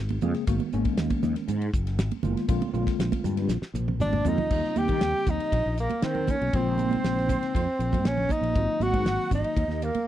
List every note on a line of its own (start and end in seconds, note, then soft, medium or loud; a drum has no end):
0.00 0.17 G#1 medium
0.09 ride medium
0.09 high conga medium
0.21 0.33 F2 loud
0.21 0.43 C#3 medium
0.21 0.43 G#3 medium
0.21 0.43 A#3 medium
0.21 0.43 C4 medium
0.21 0.43 G#4 medium
0.21 hi-hat pedal medium
0.21 high conga medium
0.21 low conga medium
0.34 snare soft
0.34 ride medium
0.47 0.58 G#1 medium
0.47 0.67 D#3 medium
0.47 0.68 G#3 medium
0.47 0.68 A#3 medium
0.47 0.68 B3 medium
0.47 0.68 F#4 medium
0.47 kick loud
0.47 hi-hat pedal medium
0.47 ride medium
0.59 ride soft
0.59 high conga medium
0.72 0.83 G#1 medium
0.72 1.54 D#3 medium
0.72 1.54 G#3 medium
0.72 1.54 A#3 medium
0.72 1.54 B3 medium
0.72 1.54 C#4 medium
0.72 hi-hat pedal medium
0.85 kick medium
0.85 ride medium
0.97 1.08 D#2 medium
0.97 snare loud
0.97 hi-hat pedal medium
0.97 ride medium
1.10 kick medium
1.10 ride medium
1.10 high conga medium
1.23 1.33 D#2 medium
1.23 snare soft
1.23 hi-hat pedal medium
1.23 low conga medium
1.36 snare soft
1.36 ride medium
1.48 1.68 G#2 medium
1.48 hi-hat pedal medium
1.48 ride medium
1.62 ride medium
1.73 1.98 F#1 medium
1.73 kick medium
1.73 hi-hat pedal medium
1.87 snare soft
1.87 ride medium
1.98 2.09 G#1 medium
1.98 snare loud
1.98 hi-hat pedal medium
1.98 ride medium
2.11 ride medium
2.11 high conga medium
2.23 2.34 F#1 medium
2.23 2.44 D#3 medium
2.23 2.44 G#3 medium
2.23 2.44 A#3 medium
2.23 2.44 B3 medium
2.23 2.44 F4 medium
2.23 hi-hat pedal medium
2.23 high conga medium
2.23 low conga medium
2.37 snare soft
2.37 ride medium
2.48 2.59 A#1 medium
2.48 2.69 D3 medium
2.48 2.69 G#3 medium
2.48 2.69 A#3 medium
2.48 2.69 C4 medium
2.48 2.69 F4 medium
2.48 kick loud
2.48 hi-hat pedal medium
2.48 ride medium
2.62 ride medium
2.62 high conga medium
2.73 2.84 A#1 medium
2.73 3.55 D3 medium
2.73 3.55 G#3 medium
2.73 3.55 A#3 medium
2.73 3.55 C4 medium
2.73 3.55 F4 medium
2.73 hi-hat pedal medium
2.87 kick medium
2.87 snare soft
2.87 ride medium
2.99 3.09 A#1 medium
2.99 snare loud
2.99 hi-hat pedal medium
2.99 ride medium
3.12 kick medium
3.12 ride medium
3.12 high conga medium
3.24 3.50 G2 medium
3.24 snare soft
3.24 hi-hat pedal medium
3.24 low conga medium
3.37 snare soft
3.37 ride medium
3.48 3.59 A#1 medium
3.48 snare medium
3.48 hi-hat pedal medium
3.62 snare medium
3.74 4.01 A#1 medium
3.74 hi-hat pedal medium
3.74 high tom medium
3.88 high tom medium
3.88 low conga medium
3.99 4.20 G#1 medium
3.99 4.29 D4 loud
3.99 4.31 D5 medium
3.99 hi-hat pedal medium
3.99 mid tom medium
3.99 high conga medium
4.13 mid tom medium
4.13 high conga medium
4.25 4.36 F2 loud
4.25 4.46 D3 medium
4.25 4.46 G#3 medium
4.25 4.46 A#3 medium
4.25 4.46 C4 medium
4.25 4.79 D#4 loud
4.25 4.46 F4 medium
4.25 floor tom medium
4.25 hi-hat pedal medium
4.25 low conga medium
4.29 4.82 D#5 medium
4.38 floor tom medium
4.38 low conga medium
4.50 4.61 D#2 medium
4.50 4.72 C#3 medium
4.50 4.72 G3 medium
4.50 4.72 A#3 medium
4.50 4.72 C4 medium
4.50 4.72 F4 medium
4.50 kick loud
4.50 crash medium
4.64 snare soft
4.76 4.87 D#2 medium
4.76 5.58 C#3 medium
4.76 5.58 G3 medium
4.76 5.58 A#3 medium
4.76 5.58 C4 medium
4.76 5.58 G4 medium
4.76 5.31 G4 medium
4.76 hi-hat pedal medium
4.76 ride soft
4.76 high conga medium
4.80 5.32 G5 medium
4.88 4.99 D#3 medium
4.88 kick medium
4.88 ride medium
4.88 high conga medium
5.01 5.12 D#2 medium
5.01 snare loud
5.01 ride medium
5.26 5.37 D#2 medium
5.26 5.79 D#4 medium
5.26 kick medium
5.26 hi-hat pedal medium
5.26 ride medium
5.26 low conga medium
5.31 5.79 D#5 medium
5.40 ride medium
5.52 5.62 A#1 medium
5.52 kick medium
5.52 ride medium
5.66 5.86 A#1 medium
5.78 6.06 A#3 medium
5.78 6.08 A#4 medium
5.78 hi-hat pedal medium
5.78 ride medium
5.90 ride medium
5.90 high conga medium
6.02 6.34 D#3 medium
6.02 6.32 C4 medium
6.02 snare medium
6.02 ride medium
6.06 6.33 C5 medium
6.15 low conga medium
6.27 6.56 C#4 medium
6.27 6.59 C#5 medium
6.27 kick medium
6.27 hi-hat pedal medium
6.27 ride soft
6.27 high conga medium
6.27 low conga medium
6.41 6.51 B1 medium
6.41 ride medium
6.53 6.94 A#1 loud
6.53 6.74 C#3 medium
6.53 6.74 G#3 medium
6.53 6.74 A#3 medium
6.53 6.74 C4 medium
6.53 8.09 C4 medium
6.53 6.74 F4 medium
6.53 8.10 C5 medium
6.53 kick loud
6.53 ride medium
6.78 7.60 C#3 medium
6.78 7.60 G#3 medium
6.78 7.60 A#3 medium
6.78 7.60 C4 medium
6.78 7.60 D#4 medium
6.78 hi-hat pedal medium
6.78 ride medium
6.78 high conga medium
6.91 ride medium
6.91 high conga medium
7.04 7.35 A#1 medium
7.04 snare medium
7.04 ride medium
7.18 snare soft
7.29 kick medium
7.29 hi-hat pedal medium
7.29 ride medium
7.29 low conga medium
7.42 muted fretless electric bass stroke soft
7.42 snare soft
7.42 ride medium
7.55 7.65 F2 medium
7.55 kick medium
7.55 ride medium
7.66 muted fretless electric bass stroke soft
7.79 7.94 A#1 medium
7.79 hi-hat pedal medium
7.79 ride medium
7.92 8.03 G2 medium
7.92 kick medium
7.92 ride medium
7.92 high conga medium
8.04 8.25 A#1 medium
8.04 8.33 C#4 medium
8.04 snare loud
8.04 ride medium
8.09 8.34 C#5 medium
8.18 low conga medium
8.29 8.84 D#4 medium
8.29 8.84 D#5 medium
8.29 kick medium
8.29 hi-hat pedal medium
8.29 ride medium
8.29 high conga medium
8.29 low conga medium
8.41 8.52 A#1 medium
8.41 ride medium
8.55 8.66 G#1 medium
8.55 8.76 D#3 medium
8.55 8.76 F#3 medium
8.55 8.77 A#3 medium
8.55 8.77 C4 medium
8.55 8.77 F4 medium
8.55 kick loud
8.55 ride medium
8.79 8.91 G#1 medium
8.79 9.62 D#3 medium
8.79 9.62 F#3 medium
8.79 9.62 A#3 medium
8.79 9.62 C4 medium
8.79 9.63 F#4 medium
8.79 9.32 F#4 medium
8.79 9.33 F#5 medium
8.79 hi-hat pedal medium
8.79 ride soft
8.79 high conga medium
8.93 9.03 G#2 medium
8.93 kick medium
8.93 ride medium
8.93 high conga medium
9.05 9.16 G#1 medium
9.05 snare medium
9.05 ride medium
9.31 9.41 G#1 medium
9.31 9.85 D#4 medium
9.31 9.86 D#5 medium
9.31 kick medium
9.31 hi-hat pedal medium
9.31 ride medium
9.31 low conga medium
9.44 ride medium
9.56 9.67 D#2 medium
9.56 kick medium
9.56 ride medium
9.68 9.89 D#2 medium
9.68 snare soft
9.82 10.07 A#3 medium
9.82 10.07 A#4 medium
9.82 hi-hat pedal medium
9.82 ride medium
9.94 muted fretless electric bass stroke soft
9.94 ride medium
9.94 high conga medium